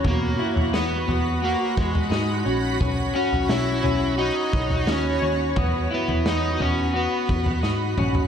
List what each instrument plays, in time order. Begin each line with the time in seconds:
Already playing: ambient pad F#4 B5
0.04 picked electric bass E2, clean electric guitar B2, electric slide guitar A#3, ambient pad F#5, kick, floor tom
0.39 clean electric guitar E4
0.56 picked electric bass E2, floor tom
0.73 picked electric bass E2, clean electric guitar B3, electric slide guitar B3, snare
1.08 picked electric bass E2, clean electric guitar B3, floor tom
1.42 electric slide guitar A#3, clean electric guitar F#4
1.77 picked electric bass E2, electric slide guitar G#3, kick
1.95 floor tom
2.11 picked electric bass G#2, clean electric guitar D#4, snare
2.45 picked electric bass A#1, clean electric guitar C#4
2.80 picked electric bass B1, clean electric guitar C#4, ambient pad C#5, kick, floor tom
3.15 electric slide guitar C#4, clean electric guitar F#4
3.32 picked electric bass B1, floor tom
3.49 picked electric bass B1, clean electric guitar C#4, electric slide guitar E4, snare
3.83 picked electric bass B1, clean electric guitar C#4, floor tom
4.18 electric slide guitar D#4, clean electric guitar F#4
4.53 picked electric bass B1, kick
4.70 floor tom
4.87 picked electric bass D#2, electric slide guitar C#4, clean electric guitar D#4, snare
5.22 picked electric bass D#2, clean electric guitar C#4
5.56 picked electric bass E2, clean electric guitar B3, ambient pad F#5 B5, kick, floor tom
5.91 electric slide guitar B3, clean electric guitar E4
6.08 picked electric bass E2, floor tom
6.25 picked electric bass E2, clean electric guitar B3, electric slide guitar D#4, snare
6.59 picked electric bass E2, clean electric guitar B3, electric slide guitar C#4, floor tom
6.94 electric slide guitar B3, clean electric guitar F#4
7.29 picked electric bass E2, kick
7.46 floor tom
7.63 picked electric bass G#2, clean electric guitar D#4, snare
7.98 picked electric bass A#1, clean electric guitar C#4, mid tom
8.15 floor tom